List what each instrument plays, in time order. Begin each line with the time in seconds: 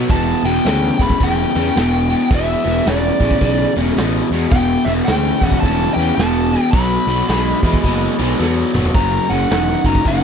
0.09 picked electric bass E1, overdriven electric guitar E2 B2, lead electric guitar A5, kick, open hi-hat
0.43 picked electric bass E1, overdriven electric guitar E2 B2, lead electric guitar G5, open hi-hat
0.65 picked electric bass D2, overdriven electric guitar E2 C#3, snare, open hi-hat
0.99 picked electric bass E1, overdriven electric guitar E2 C#3, lead electric guitar B5, kick, open hi-hat
1.10 kick
1.20 picked electric bass E1, overdriven electric guitar E2 C#3, lead electric guitar G5, kick, open hi-hat
1.55 overdriven electric guitar E2 C#3, picked electric bass E2, open hi-hat
1.76 picked electric bass E1, overdriven electric guitar E2 B2, snare, open hi-hat
2.10 overdriven electric guitar E2 B2, open hi-hat
2.31 picked electric bass E1, overdriven electric guitar E2 B2, kick, open hi-hat
2.35 lead electric guitar E5
2.64 picked electric bass E1, overdriven electric guitar E2 B2, open hi-hat
2.85 picked electric bass E1, overdriven electric guitar E2 C#3, snare, open hi-hat
2.89 lead electric guitar D5
3.20 picked electric bass A1, overdriven electric guitar E2 C#3, kick, open hi-hat
3.31 kick
3.41 picked electric bass B1, overdriven electric guitar E2 C#3, kick, open hi-hat
3.76 picked electric bass E1, overdriven electric guitar E2 C#3, open hi-hat
3.89 snare
3.97 picked electric bass A1, overdriven electric guitar E2 B2, snare, open hi-hat
4.31 picked electric bass E2, overdriven electric guitar E2 B2, open hi-hat
4.50 picked electric bass E1, overdriven electric guitar E2 B2, tonewheel organ D4 E4 G4, lead electric guitar G5, kick, open hi-hat
4.85 picked electric bass E1, overdriven electric guitar E2 B2, lead electric guitar E5, open hi-hat
5.05 picked electric bass D2, overdriven electric guitar E2 C#3, lead electric guitar G5, snare, open hi-hat
5.41 picked electric bass E1, overdriven electric guitar E2 C#3, lead electric guitar F#5, kick, open hi-hat
5.52 kick
5.60 picked electric bass E1, overdriven electric guitar E2, lead electric guitar A5, kick, open hi-hat
5.64 overdriven electric guitar C#3
5.94 picked electric bass E2, overdriven electric guitar E2, lead electric guitar G5, open hi-hat
5.98 overdriven electric guitar C#3
6.16 picked electric bass E1, overdriven electric guitar E2 B2, lead electric guitar A5, snare, open hi-hat
6.52 overdriven electric guitar E2 B2, open hi-hat
6.62 lead electric guitar G5
6.71 picked electric bass B1, overdriven electric guitar B2 F#3, tonewheel organ D4 A4 C#5, lead electric guitar B5, kick, open hi-hat
7.07 picked electric bass B1, overdriven electric guitar B2 F#3, open hi-hat
7.28 picked electric bass B1, overdriven electric guitar B2 G#3, snare, open hi-hat
7.63 picked electric bass E2, overdriven electric guitar B2 G#3, kick, open hi-hat
7.73 kick
7.84 picked electric bass F#1, overdriven electric guitar B2 G#3, kick, open hi-hat
8.19 picked electric bass B1, overdriven electric guitar B2 G#3, open hi-hat
8.31 snare
8.39 picked electric bass E2, overdriven electric guitar B2 F#3, snare
8.74 picked electric bass F1, overdriven electric guitar B2 F#3, mid tom
8.85 floor tom
8.94 picked electric bass F#1, overdriven electric guitar F#2 C#3, tonewheel organ F4 B4 D5, lead electric guitar A#5, kick, open hi-hat
9.12 tonewheel organ E4 A#4 C#5, snare
9.29 picked electric bass F#1, overdriven electric guitar F#2 C#3, lead electric guitar F#5, open hi-hat
9.50 picked electric bass E1, overdriven electric guitar F#2 D#3, snare, open hi-hat
9.84 picked electric bass F#1, overdriven electric guitar F#2 D#3, lead electric guitar A#5, kick, open hi-hat
9.95 kick
10.05 picked electric bass F#1, overdriven electric guitar F#2 D#3, lead electric guitar F#5, kick, open hi-hat